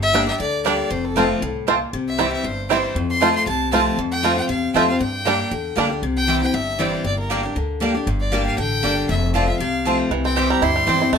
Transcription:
Already playing: G1 G2
0.03 E5
0.13 G3 A#3 D4 G4 D5 G5
0.27 D4 G4 E5
0.40 D2 D3 D5
0.64 G3 A#3 D4 G4 D5 G5
0.90 F1 F2 C5
1.05 A4
1.16 F3 A3 C4 F4 C5 A5
1.42 C2 A2
1.67 A#2 A3 C4 F4 C5 A5
1.93 C2 C3
2.08 E5
2.18 E3 G3 C4 E4 C5 G5
2.33 E5
2.44 G1 G2 C5
2.69 E3 G3 C4 E4 C5 G5
2.95 F2
3.10 C6
3.20 F3 A3 C4 F4 C5 A5
3.36 C6
3.46 C2 C3 A5
3.71 F3 A3 C4 F4 C5 A5
3.98 F2
4.12 G5
4.23 F3 A3 C4 F4 C5 A5
4.37 C4 F4 G5
4.49 E2 C3 F5
4.74 F2 F3 A3 C4 F4 C5 E5 A5
4.88 C4 F4 F5
5.00 G2 G5
5.25 G3 A#3 D4 G4 D5 G5
5.51 E2 D3
5.76 D2 G3 A#3 D4 G4 D5 G5
5.90 D4 G4
6.02 C2 C3
6.17 G5
6.27 E3 G3 C4 E4 C5 G5
6.42 C4 E4 G5
6.54 G1 G2 E5
6.79 E3 G3 C4 E4 C5 D5 G5
7.04 G1 G2 D5
7.19 A#4
7.30 G3 A#3 D4 G4 D5 G5
7.43 D4 G4
7.56 D2 D3
7.80 G3 A#3 D4 G4 D5 G5
7.95 D4 G4
8.07 G1 G2
8.20 D5
8.32 G3 A#3 D4 G4 D5 G5
8.47 F5
8.58 A1 D3 G5
8.83 G1 G3 A#3 D4 G4 D5 G5
9.09 F1 F2 E5
9.34 F3 A3 C4 F4 C5 D5 A5
9.48 C4 F4 E5
9.60 C2 C3 F5
9.85 F3 A3 C4 F4 C5 A5
10.11 C2 C3 E3
10.25 C4 G5
10.36 E3 G3 C4 E4 G4 C5 G5
10.50 G3 C4 E4 A#5
10.62 D2 G2 E4 C6
10.76 G3
10.87 E2 E3 G3 C4 E4 C5 G5
11.00 C4 E4
11.13 F2 A3 A5

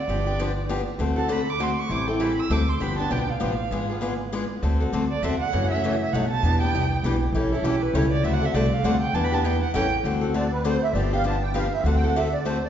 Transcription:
Already playing: D5
0.08 G1 D3 F3 B3 D4 G4
0.26 B3 D4 G4
0.39 D3 F3 B3 D4 G4
0.69 D3 F3 B3 D4 G4
0.99 D2 D3 A3 C4 F#4 A4
1.16 C4 F#4 A4 A5
1.28 D3 A3 C4 F#4 A4 B5
1.50 D6
1.59 D3 A3 C4 F#4 A4 C6
1.79 C#6
1.89 A1 E3 G3 C4 E4 A4 D6
2.08 C4 E4 A4 G5
2.20 E3 G3 C4 E4 A4 B5
2.39 E6
2.50 D2 D3 A3 C4 F#4 A4 D6
2.69 C6
2.80 G1 D3 F3 B3 D4 G4 B5
2.97 B3 D4 G4 A5
3.10 B1 D3 F3 B3 D4 G4 G5
3.30 F5
3.40 A1 D3 F3 B3 D4 G4
3.71 G#1 D3 G#3 B3 F4 G#4
3.90 B3 F4 G#4
4.01 D3 G#3 B3 F4 G#4
4.32 D3 G#3 B3 F4 G#4
4.62 D2 D3 A3 C4 F#4 A4
4.80 C4 F#4 A4
4.92 D2 D3 A3 C4 F#4 A4
5.11 D5
5.23 E2 D3 A3 C4 F#4 A4 E5
5.40 F#5
5.52 F#2 C#3 E3 A3 C#4 F#4
5.71 C#4 F#4 E5
5.75 A3
5.84 C#3 E3 A3 C#4 F#4
6.01 E5
6.13 B1 B2 F#3 A3 D#4 F#4 F#5
6.31 A5
6.43 E2 E3 B3 D4 G4
6.62 B3 D4 G4 G5
6.73 C2 E3 B3 D4 G4
7.03 B1 E3 B3 D4 G4
7.32 A1 E3 G3 C#4 E4 A4
7.52 C#4 E4 A4
7.63 B1 E3 G3 C#4 E4 G4 A4
7.82 B4
7.93 C#2 E3 G3 C#4 E4 A4 C#5
8.12 D5
8.23 D2 D3 A3 C4 F#4 A4 E5
8.33 F#5
8.42 C4 F#4 A4 E5
8.54 C2 D3 A3 C4 F#4 A4 D5
8.73 F5
8.83 D2 D3 A3 C4 F#4 A4 F#5
9.02 G5
9.13 E2 E3 B3 D4 G4 A5
9.24 B5
9.32 B3 D4 G4 A5
9.44 E3 B3 D4 G4 G5
9.63 F#5
9.74 A1 E3 G3 C#4 E4 A4 G5
10.04 D2 D3 A3 C4 F#4 A4
10.21 C4 F#4 A4
10.34 D3 A3 C4 F#4 A4 D5
10.52 B4
10.64 D3 A3 C4 F#4 A4 C5
10.83 E5
10.93 G1 D3 F3 B3 D4 G4 D5
11.13 B3 D4 G4 F5
11.24 D3 F3 B3 D4 G4 A5
11.43 G5
11.54 D3 F3 B3 D4 G4 F5
11.73 E5
11.84 D2 D3 A3 C4 F#4 A4 F#5
11.95 G5
12.04 C4 F#4 A4 F#5
12.16 D3 A3 C4 F#4 A4 E5
12.34 D5
12.45 D3 A3 C4 F#4 A4 C5
12.64 D5

